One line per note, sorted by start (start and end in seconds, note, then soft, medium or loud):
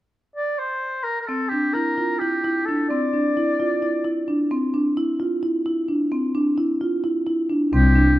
0.36 0.60 D5 medium
0.59 1.05 C5 medium
1.04 1.21 A#4 medium
1.21 1.28 A#4 soft
1.26 1.42 C4 medium
1.26 1.50 A4 medium
1.49 1.65 D4 soft
1.49 1.75 G4 soft
1.73 1.88 E4 soft
1.73 2.20 A#4 medium
1.98 2.11 F4 soft
2.19 2.34 E4 soft
2.19 2.67 G4 medium
2.44 2.57 E4 medium
2.65 2.81 D4 soft
2.65 2.89 A4 medium
2.89 3.03 C4 medium
2.89 4.24 D5 medium
3.13 3.26 D4 soft
3.37 3.50 E4 medium
3.60 3.73 F4 soft
3.82 3.95 E4 soft
4.05 4.18 E4 soft
4.28 4.41 D4 soft
4.51 4.64 C4 medium
4.74 4.87 D4 soft
4.97 5.10 E4 medium
5.20 5.33 F4 soft
5.43 5.56 E4 medium
5.66 5.79 E4 soft
5.88 6.02 D4 soft
6.12 6.25 C4 medium
6.35 6.48 D4 soft
6.58 6.71 E4 medium
6.81 6.94 F4 soft
7.04 7.17 E4 medium
7.27 7.40 E4 medium
7.50 7.63 D4 soft
7.73 7.93 C2 medium
7.73 7.86 C4 medium
7.73 8.16 G4 medium
7.95 8.09 D4 medium